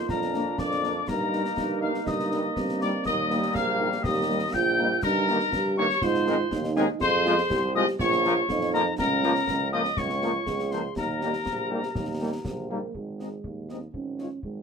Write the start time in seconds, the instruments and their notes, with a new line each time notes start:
Already playing: trombone section A#3, euphonium F4
0.08 tuba F2, trombone section D4, trumpet section A#4, piccolo A#5, concert bass drum, snare
0.22 snare
0.34 french horn section A#3 D4, snare
0.58 tuba F2, euphonium D4, trumpet section D5, piccolo D6, concert bass drum, snare
0.71 snare
0.83 french horn section A#3 D4, snare
1.08 tuba G2, trombone section A#3 D#4, euphonium D#4, trumpet section A#4, piccolo A#5, concert bass drum, snare, crash
1.33 french horn section G3 A#3 D#4, snare
1.45 snare
1.57 tuba G2, concert bass drum, snare
1.81 french horn section G3 A#3 D#4, trumpet section F5, piccolo F6
1.94 snare
2.06 tuba G2, trumpet section D#5, piccolo D#6, concert bass drum, snare
2.19 snare
2.31 french horn section G3 A#3 D#4, snare
2.56 tuba G2, euphonium C4, concert bass drum, snare
2.68 snare
2.81 french horn section G3 A#3 D#4, trumpet section D5, piccolo D6, snare
3.05 tuba D#2, trombone section G3 A#3, euphonium A#3, trumpet section D#5, piccolo D#6, concert bass drum, snare
3.30 french horn section G3 A#3 D#4, snare
3.42 snare
3.53 tuba A#1, trumpet section F5, piccolo F6, concert bass drum, snare
3.79 french horn section G3 A#3 D#4
3.92 snare
4.03 tuba D#2, euphonium G4, trumpet section D#5, piccolo D#6, concert bass drum, snare
4.29 french horn section G3 A#3 D#4
4.52 tuba A#1, euphonium F4, trumpet section G5, piccolo G6, concert bass drum, snare
4.78 french horn section G3 A#3 D#4
5.02 tuba G2, euphonium D#4, trumpet section A#4, piccolo A#5, concert bass drum, snare, crash
5.27 trombone section D#3 A#3, french horn section A#3 D#4, snare
5.40 snare
5.52 tuba G2, euphonium G4, concert bass drum, snare
5.77 trombone section D#3 A#3, french horn section A#3 D#4, trumpet section C#5, piccolo C#6
5.90 snare
6.01 tuba G#2, euphonium F4, trumpet section C5, piccolo C6, concert bass drum, snare
6.14 snare
6.26 trombone section D#3 G#3, french horn section G#3 C4 D#4, snare
6.51 tuba D#2, euphonium D#4, concert bass drum, snare
6.64 snare
6.76 trombone section D#3 G#3, french horn section G#3 C4 D#4, trumpet section G#4, piccolo G#5, snare
7.00 tuba F2, euphonium G#4, trumpet section C5, piccolo C6, concert bass drum, snare
7.25 trombone section F3 G#3, french horn section G#3 C4 F4, snare
7.38 snare
7.50 tuba C2, euphonium G4, concert bass drum, snare
7.74 trombone section F3 G#3, french horn section G#3 C4 F4, trumpet section D#5, piccolo D#6
7.87 snare
7.99 tuba A#1, euphonium F4, trumpet section C#5, piccolo C#6, concert bass drum, snare
8.12 snare
8.24 french horn section F3 A#3 F4, trombone section F3 A#3, snare
8.49 tuba F2, euphonium D#4, concert bass drum, snare
8.61 snare
8.72 french horn section F3 A#3 F4, trombone section F3 A#3, trumpet section A#4, piccolo A#5, snare
8.97 tuba C#2, euphonium C#4, trumpet section A#4, piccolo A#5, concert bass drum, snare, crash
9.23 french horn section F3 A#3 F4, trombone section F3 A#3, snare
9.35 snare
9.47 tuba C#2, concert bass drum, snare
9.72 french horn section F3 A#3 F4, trombone section F3 A#3, trumpet section D#5, piccolo D#6
9.85 snare
9.97 tuba C#2, euphonium F4, trumpet section C#5, piccolo C#6, concert bass drum, snare
10.09 snare
10.22 trombone section F3 A#3, french horn section F3 A#3 F4, snare
10.46 tuba C#2, euphonium G#4, concert bass drum, snare
10.59 snare
10.71 french horn section F3 A#3 F4, trombone section F3 A#3, trumpet section C5, piccolo C6, snare
10.96 tuba D#2, euphonium G4, trumpet section A#4, piccolo A#5, concert bass drum, snare
11.21 trombone section G3 A#3, french horn section G3 A#3 D#4, snare
11.33 snare
11.46 tuba A#1, concert bass drum, snare
11.71 trombone section G3 A#3, french horn section G3 A#3 D#4
11.83 snare
11.95 tuba D#2, concert bass drum, snare
12.20 trombone section G3 A#3, french horn section G3 A#3 D#4
12.45 tuba A#1, concert bass drum, snare
12.69 trombone section G3 A#3, french horn section G3 A#3 D#4, euphonium A#3
12.94 tuba G#1, euphonium G#3, concert bass drum
13.19 french horn section G#3 C4 D#4, trumpet section D#5, snare
13.44 tuba D#2, concert bass drum
13.69 french horn section G#3 C4 D#4, euphonium C4, trumpet section D#5, snare
13.93 tuba G#1, euphonium C#4, concert bass drum
14.18 french horn section G#3 C#4 F4, trumpet section C#5, snare
14.43 tuba G#1, euphonium G#3, concert bass drum